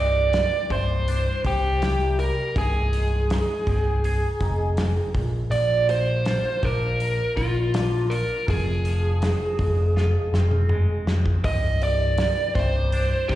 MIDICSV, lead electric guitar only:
0, 0, Header, 1, 2, 480
1, 0, Start_track
1, 0, Key_signature, -3, "minor"
1, 0, Tempo, 740741
1, 1658, Time_signature, 4, 2, 24, 8
1, 8652, End_track
2, 0, Start_track
2, 0, Title_t, "Lead electric guitar"
2, 0, Program_c, 0, 29
2, 0, Note_on_c, 0, 74, 98
2, 464, Note_off_c, 0, 74, 0
2, 467, Note_on_c, 0, 72, 88
2, 916, Note_off_c, 0, 72, 0
2, 948, Note_on_c, 0, 67, 72
2, 1421, Note_off_c, 0, 67, 0
2, 1423, Note_on_c, 0, 70, 80
2, 1668, Note_off_c, 0, 70, 0
2, 1672, Note_on_c, 0, 68, 69
2, 3319, Note_off_c, 0, 68, 0
2, 3570, Note_on_c, 0, 74, 84
2, 3797, Note_off_c, 0, 74, 0
2, 3822, Note_on_c, 0, 72, 99
2, 4304, Note_on_c, 0, 70, 91
2, 4314, Note_off_c, 0, 72, 0
2, 4755, Note_off_c, 0, 70, 0
2, 4775, Note_on_c, 0, 65, 76
2, 5248, Note_on_c, 0, 70, 78
2, 5271, Note_off_c, 0, 65, 0
2, 5476, Note_off_c, 0, 70, 0
2, 5507, Note_on_c, 0, 68, 79
2, 7157, Note_off_c, 0, 68, 0
2, 7419, Note_on_c, 0, 75, 90
2, 7664, Note_off_c, 0, 75, 0
2, 7666, Note_on_c, 0, 74, 110
2, 8130, Note_off_c, 0, 74, 0
2, 8132, Note_on_c, 0, 72, 94
2, 8607, Note_on_c, 0, 67, 76
2, 8630, Note_off_c, 0, 72, 0
2, 8652, Note_off_c, 0, 67, 0
2, 8652, End_track
0, 0, End_of_file